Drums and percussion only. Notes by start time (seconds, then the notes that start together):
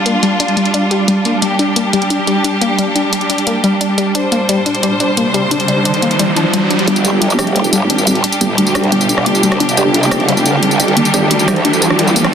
0.06 closed hi-hat
0.23 closed hi-hat
0.40 closed hi-hat
0.48 closed hi-hat
0.57 closed hi-hat
0.65 closed hi-hat
0.74 closed hi-hat
0.91 closed hi-hat
1.08 closed hi-hat
1.25 closed hi-hat
1.42 closed hi-hat
1.59 closed hi-hat
1.76 closed hi-hat
1.93 closed hi-hat
2.02 closed hi-hat
2.10 closed hi-hat
2.27 closed hi-hat
2.44 closed hi-hat
2.61 closed hi-hat
2.79 closed hi-hat
2.96 closed hi-hat
3.13 closed hi-hat
3.21 closed hi-hat
3.30 closed hi-hat
3.38 closed hi-hat
3.47 closed hi-hat
3.64 closed hi-hat
3.81 closed hi-hat
3.98 closed hi-hat
4.15 closed hi-hat
4.32 closed hi-hat
4.49 closed hi-hat
4.66 closed hi-hat
4.75 closed hi-hat
4.83 closed hi-hat
5.00 closed hi-hat
5.17 closed hi-hat
5.34 closed hi-hat
5.51 closed hi-hat
5.60 closed hi-hat
5.68 closed hi-hat
5.85 closed hi-hat
5.94 closed hi-hat
6.02 closed hi-hat
6.11 closed hi-hat
6.19 closed hi-hat
6.37 closed hi-hat
6.54 closed hi-hat
6.71 closed hi-hat
6.79 closed hi-hat
6.88 closed hi-hat
6.96 closed hi-hat, tambourine
7.05 closed hi-hat, tambourine
7.22 closed hi-hat
7.30 tambourine
7.39 cross-stick, closed hi-hat, tambourine
7.47 closed hi-hat
7.56 closed hi-hat
7.64 tambourine
7.73 closed hi-hat, tambourine
7.90 closed hi-hat
7.98 tambourine
8.07 closed hi-hat, tambourine
8.15 closed hi-hat
8.24 closed hi-hat
8.32 closed hi-hat, tambourine
8.41 closed hi-hat, tambourine
8.58 closed hi-hat
8.67 tambourine
8.75 cross-stick, closed hi-hat, tambourine
8.84 closed hi-hat
8.92 closed hi-hat
9.01 tambourine
9.09 closed hi-hat, tambourine
9.18 cross-stick
9.26 closed hi-hat
9.35 tambourine
9.43 closed hi-hat, tambourine
9.52 cross-stick, closed hi-hat
9.60 closed hi-hat
9.69 closed hi-hat, tambourine
9.77 closed hi-hat, tambourine
9.94 closed hi-hat
10.03 tambourine
10.11 cross-stick, closed hi-hat, tambourine
10.20 closed hi-hat
10.29 closed hi-hat
10.37 tambourine
10.46 closed hi-hat, tambourine
10.63 closed hi-hat
10.71 tambourine
10.80 closed hi-hat, tambourine
10.88 closed hi-hat
10.97 closed hi-hat
11.05 closed hi-hat, tambourine
11.14 closed hi-hat, tambourine
11.31 closed hi-hat
11.39 tambourine
11.48 cross-stick, closed hi-hat, tambourine
11.56 closed hi-hat
11.65 closed hi-hat
11.73 tambourine
11.82 closed hi-hat, tambourine
11.90 cross-stick
11.99 closed hi-hat
12.07 tambourine
12.16 closed hi-hat, tambourine
12.24 cross-stick, closed hi-hat